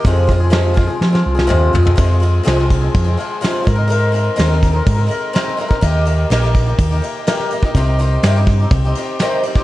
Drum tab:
CC |----------------|x-x-x-x-x-x-x-x-|x-x-x-x-x-x-x-x-|x-x-x-x-x-x-x-x-|
HH |o-o-o-o---------|----------------|----------------|----------------|
SD |----o---oo-o----|----oo------o---|----oo------oo--|----oo------oo--|
T2 |------------o---|----------------|----------------|----------------|
FT |--------------oo|----------------|----------------|----------------|
BD |o-o---o---------|o-----o-o-----o-|------o-o------o|o-----o-o------o|

CC |x-x-x-x-x-x-x-x-|
HH |----------------|
SD |----oo------o---|
T2 |----------------|
FT |----------------|
BD |o-----o-o------o|